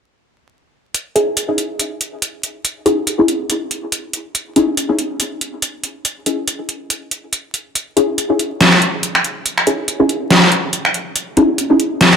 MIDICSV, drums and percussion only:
0, 0, Header, 1, 2, 480
1, 0, Start_track
1, 0, Key_signature, 4, "minor"
1, 0, Tempo, 425532
1, 1065, Time_signature, 4, 2, 24, 8
1, 13722, End_track
2, 0, Start_track
2, 0, Title_t, "Drums"
2, 1065, Note_on_c, 9, 42, 73
2, 1178, Note_off_c, 9, 42, 0
2, 1305, Note_on_c, 9, 42, 49
2, 1418, Note_off_c, 9, 42, 0
2, 1543, Note_on_c, 9, 42, 73
2, 1656, Note_off_c, 9, 42, 0
2, 1783, Note_on_c, 9, 42, 49
2, 1895, Note_off_c, 9, 42, 0
2, 2025, Note_on_c, 9, 42, 71
2, 2138, Note_off_c, 9, 42, 0
2, 2265, Note_on_c, 9, 42, 49
2, 2378, Note_off_c, 9, 42, 0
2, 2505, Note_on_c, 9, 42, 71
2, 2618, Note_off_c, 9, 42, 0
2, 2745, Note_on_c, 9, 42, 47
2, 2858, Note_off_c, 9, 42, 0
2, 2985, Note_on_c, 9, 42, 73
2, 3097, Note_off_c, 9, 42, 0
2, 3224, Note_on_c, 9, 42, 49
2, 3337, Note_off_c, 9, 42, 0
2, 3463, Note_on_c, 9, 42, 75
2, 3576, Note_off_c, 9, 42, 0
2, 3704, Note_on_c, 9, 42, 49
2, 3816, Note_off_c, 9, 42, 0
2, 3944, Note_on_c, 9, 42, 72
2, 4057, Note_off_c, 9, 42, 0
2, 4185, Note_on_c, 9, 42, 49
2, 4297, Note_off_c, 9, 42, 0
2, 4424, Note_on_c, 9, 42, 74
2, 4537, Note_off_c, 9, 42, 0
2, 4663, Note_on_c, 9, 42, 49
2, 4776, Note_off_c, 9, 42, 0
2, 4905, Note_on_c, 9, 42, 72
2, 5017, Note_off_c, 9, 42, 0
2, 5144, Note_on_c, 9, 42, 48
2, 5257, Note_off_c, 9, 42, 0
2, 5384, Note_on_c, 9, 42, 73
2, 5497, Note_off_c, 9, 42, 0
2, 5624, Note_on_c, 9, 42, 49
2, 5737, Note_off_c, 9, 42, 0
2, 5863, Note_on_c, 9, 42, 76
2, 5975, Note_off_c, 9, 42, 0
2, 6106, Note_on_c, 9, 42, 48
2, 6218, Note_off_c, 9, 42, 0
2, 6343, Note_on_c, 9, 42, 73
2, 6456, Note_off_c, 9, 42, 0
2, 6582, Note_on_c, 9, 42, 47
2, 6695, Note_off_c, 9, 42, 0
2, 6823, Note_on_c, 9, 42, 70
2, 6936, Note_off_c, 9, 42, 0
2, 7063, Note_on_c, 9, 42, 48
2, 7176, Note_off_c, 9, 42, 0
2, 7304, Note_on_c, 9, 42, 72
2, 7417, Note_off_c, 9, 42, 0
2, 7544, Note_on_c, 9, 42, 46
2, 7657, Note_off_c, 9, 42, 0
2, 7785, Note_on_c, 9, 42, 69
2, 7898, Note_off_c, 9, 42, 0
2, 8025, Note_on_c, 9, 42, 48
2, 8138, Note_off_c, 9, 42, 0
2, 8265, Note_on_c, 9, 42, 71
2, 8378, Note_off_c, 9, 42, 0
2, 8505, Note_on_c, 9, 42, 46
2, 8617, Note_off_c, 9, 42, 0
2, 8747, Note_on_c, 9, 42, 68
2, 8859, Note_off_c, 9, 42, 0
2, 8987, Note_on_c, 9, 42, 44
2, 9100, Note_off_c, 9, 42, 0
2, 9227, Note_on_c, 9, 42, 68
2, 9340, Note_off_c, 9, 42, 0
2, 9468, Note_on_c, 9, 42, 45
2, 9581, Note_off_c, 9, 42, 0
2, 9707, Note_on_c, 9, 38, 108
2, 9707, Note_on_c, 9, 42, 67
2, 9820, Note_off_c, 9, 38, 0
2, 9820, Note_off_c, 9, 42, 0
2, 9841, Note_on_c, 9, 26, 48
2, 9947, Note_on_c, 9, 42, 44
2, 9953, Note_off_c, 9, 26, 0
2, 10060, Note_off_c, 9, 42, 0
2, 10187, Note_on_c, 9, 42, 68
2, 10300, Note_off_c, 9, 42, 0
2, 10322, Note_on_c, 9, 26, 47
2, 10428, Note_on_c, 9, 42, 45
2, 10434, Note_off_c, 9, 26, 0
2, 10541, Note_off_c, 9, 42, 0
2, 10666, Note_on_c, 9, 42, 68
2, 10779, Note_off_c, 9, 42, 0
2, 10801, Note_on_c, 9, 26, 50
2, 10906, Note_on_c, 9, 42, 47
2, 10914, Note_off_c, 9, 26, 0
2, 11019, Note_off_c, 9, 42, 0
2, 11144, Note_on_c, 9, 42, 68
2, 11257, Note_off_c, 9, 42, 0
2, 11384, Note_on_c, 9, 42, 45
2, 11497, Note_off_c, 9, 42, 0
2, 11624, Note_on_c, 9, 38, 104
2, 11624, Note_on_c, 9, 42, 70
2, 11737, Note_off_c, 9, 38, 0
2, 11737, Note_off_c, 9, 42, 0
2, 11864, Note_on_c, 9, 42, 45
2, 11977, Note_off_c, 9, 42, 0
2, 12103, Note_on_c, 9, 42, 68
2, 12216, Note_off_c, 9, 42, 0
2, 12239, Note_on_c, 9, 26, 49
2, 12344, Note_on_c, 9, 42, 45
2, 12352, Note_off_c, 9, 26, 0
2, 12457, Note_off_c, 9, 42, 0
2, 12584, Note_on_c, 9, 42, 70
2, 12697, Note_off_c, 9, 42, 0
2, 12824, Note_on_c, 9, 42, 46
2, 12937, Note_off_c, 9, 42, 0
2, 13065, Note_on_c, 9, 42, 70
2, 13177, Note_off_c, 9, 42, 0
2, 13305, Note_on_c, 9, 42, 46
2, 13418, Note_off_c, 9, 42, 0
2, 13544, Note_on_c, 9, 38, 102
2, 13544, Note_on_c, 9, 42, 72
2, 13657, Note_off_c, 9, 38, 0
2, 13657, Note_off_c, 9, 42, 0
2, 13678, Note_on_c, 9, 26, 49
2, 13722, Note_off_c, 9, 26, 0
2, 13722, End_track
0, 0, End_of_file